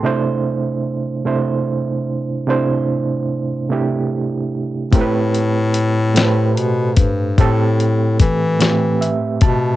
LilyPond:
<<
  \new Staff \with { instrumentName = "Reed electric piano" } { \time 6/8 \key a \minor \tempo 4. = 49 << { r2. | r2. | r2. | r2 e''8 a''8 | } \\ { <c a d' e' c''>4~ <c a d' e' c''>16 r16 <c a d' e' c''>4~ <c a d' e' c''>16 r16 | <c a d' e' c''>4~ <c a d' e' c''>16 r16 <c a d' e' g'>4~ <c a d' e' g'>16 r16 | <a, a c' g' bes' b'>4~ <a, a c' g' bes' b'>16 r16 <a, a g' a' b' c''>4~ <a, a g' a' b' c''>16 r16 | <a, a c' g' a'>4~ <a, a c' g' a'>16 r16 <a, a c' g' b'>4~ <a, a c' g' b'>16 r16 | } >> }
  \new Staff \with { instrumentName = "Bass clarinet" } { \clef bass \time 6/8 \key a \minor r2. | r2. | a,2 b,8 g,8 | a,4 e4 r8 b,8 | }
  \new DrumStaff \with { instrumentName = "Drums" } \drummode { \time 6/8 r4. r4. | r4. r4. | <hh bd>8 hh8 hh8 <hh sn>8 hh8 <hh bd>8 | <hh bd>8 hh8 <hh bd>8 <hh sn>8 hh8 <hh bd>8 | }
>>